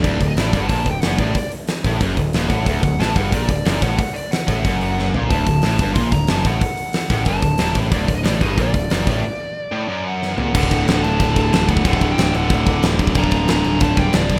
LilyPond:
<<
  \new Staff \with { instrumentName = "Lead electric guitar" } { \time 4/4 \tempo 4 = 183 \tuplet 3/2 { d''4 ees''8 } d''8. fis''16 \tuplet 3/2 { a''4 g''8 } fis''8 d''8~ | d''8 r2. fis''8 | fis''8 fis''8 a''8 fis''8 d''8 d''4 fis''8 | fis''8 d''8 fis''2~ fis''8 r8 |
a''2 c'''8 bes''8 a''8 fis''8 | fis''2 a''4. r8 | \tuplet 3/2 { d''4 ees''8 } d''8 ees''8 d''2~ | d''2~ d''8 fis''4 fis''8~ |
fis''4. a''4~ a''16 a''8. fis''8 | fis''8. g''8. fis''4. r4 | bes''4 bes''4 a''8 g''8 d''4 | }
  \new Staff \with { instrumentName = "Distorted electric guitar" } { \clef bass \time 4/4 d,8 d,8 a,8 g,8 bes,8 d,8 fis,8 a,8 | r4. a,8 fis,8 d,8 ees,8 a,8 | d,8 d,8 a,8 g,8 bes,8 d,8 fis,8 a,8 | r4. a,8 fis,4. bes,8 |
d,8 d,8 a,8 g,8 bes,8 d,8 fis,8 a,8 | r4. a,8 fis,8 d,8 ees,8 a,8 | d,8 d,8 a,8 g,8 bes,8 d,8 fis,8 a,8 | r4. a,8 fis,4. bes,8 |
<d, a, d>1 | <d, a, d>1 | <g, d g>1 | }
  \new Staff \with { instrumentName = "Picked electric bass" } { \clef bass \time 4/4 d,,8 d,,8 a,,8 g,,8 bes,,8 d,,8 fis,,8 a,,8 | r4. a,,8 fis,,8 d,,8 ees,,8 a,,8 | d,,8 d,,8 a,,8 g,,8 bes,,8 d,,8 fis,,8 a,,8 | r4. a,,8 fis,,4. bes,,8 |
d,,8 d,,8 a,,8 g,,8 bes,,8 d,,8 fis,,8 a,,8 | r4. a,,8 fis,,8 d,,8 ees,,8 a,,8 | d,,8 d,,8 a,,8 g,,8 bes,,8 d,,8 fis,,8 a,,8 | r1 |
d,,8 d,,8 d,,8 d,,8 d,,8 d,,8 d,,8 d,,8 | d,,8 d,,8 d,,8 d,,8 d,,8 d,,8 d,,8 d,,8 | d,,8 d,,8 d,,8 d,,8 d,,8 d,,8 d,,8 b,,8 | }
  \new DrumStaff \with { instrumentName = "Drums" } \drummode { \time 4/4 <cymc bd>8 <hho bd>8 <hho sn>8 <hho bd>8 <hho bd>8 <hho bd>8 <hho sn>8 <hho bd>8 | <hho bd>8 hho8 <hho sn>8 <hho bd>8 <hho bd>8 <hho bd>8 <hho sn>8 <hho bd>8 | <hho bd>8 <hho bd>8 <hho sn>8 <hho bd>8 <hho bd>8 <hho bd>8 <hho sn>8 <hho bd>8 | <hho bd>8 hho8 <hho sn>8 <hho bd>8 <hho bd>8 hho8 sn8 tomfh8 |
<hho bd>8 <hho bd>8 <hho sn>8 <hho bd>8 <hho bd>8 <hho bd>8 <hho sn>8 <hho bd>8 | <hho bd>8 hho8 <hho sn>8 <hho bd>8 <hho bd>8 <hho bd>8 <hho sn>8 <hho bd>8 | <hho bd>8 <hho bd>8 <hho sn>8 <hho bd>8 <hho bd>8 <hho bd>8 <hho sn>8 <hho bd>8 | r4 r4 r4 sn8 tomfh8 |
<cymc bd>16 bd16 <cymc bd>8 <cymc sn>8 cymc8 <cymc bd>8 <cymc bd>8 <cymc sn>8 <cymc bd>16 bd16 | <cymc bd>16 bd16 <cymc bd>8 <cymc sn>8 cymc8 <cymc bd>8 <cymc bd>8 <cymc sn>8 <cymc bd>16 bd16 | <cymc bd>16 bd16 <cymc bd>8 <cymc sn>8 cymc8 <cymc bd>8 <cymc bd>8 <cymc sn>8 <cymc bd>8 | }
>>